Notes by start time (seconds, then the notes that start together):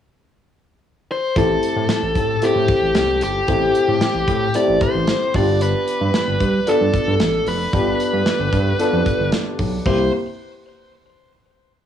1.12 C5
1.36 A1 A3 C4 E4 G4 A4, kick, closed hi-hat
1.63 closed hi-hat
1.76 A2
1.89 snare, closed hi-hat
2.02 A1
2.16 A2, kick, closed hi-hat
2.42 A2 A3 C4 E4 G4 A4, closed hi-hat
2.55 A2
2.68 kick, closed hi-hat
2.82 A1
2.95 C2 G4, snare, closed hi-hat
3.21 G1 G4, closed hi-hat
3.47 A1 A3 C4 E4 G4, kick, closed hi-hat
3.75 closed hi-hat
3.88 A2
4.01 snare, closed hi-hat
4.15 A1
4.28 A2, kick, closed hi-hat
4.54 A3 C4 E4 G4 D5, closed hi-hat
4.68 A1
4.81 C5, kick, closed hi-hat
4.95 A1
5.07 snare, closed hi-hat
5.34 G1 B3 D4 F4 G4 D5, kick, open hi-hat
5.61 B4, closed hi-hat
5.88 closed hi-hat
6.01 G2
6.14 snare, closed hi-hat
6.27 G1
6.40 G2, kick, closed hi-hat
6.67 G2 B3 D4 F4 A4, closed hi-hat
6.81 G2
6.94 kick, closed hi-hat
7.07 G2
7.20 A1, snare, closed hi-hat
7.47 F1 B4, open hi-hat
7.73 G1 B3 D4 F4 G4, kick, closed hi-hat
8.00 closed hi-hat
8.13 G2
8.26 snare, closed hi-hat
8.40 G1
8.53 G2, kick, closed hi-hat
8.79 B3 D4 F4 A4, closed hi-hat
8.92 F2
9.06 kick, closed hi-hat
9.19 G1
9.32 snare, closed hi-hat
9.59 B1, kick, open hi-hat
9.86 C2 A#3 C4 E4 G4 C5, kick, crash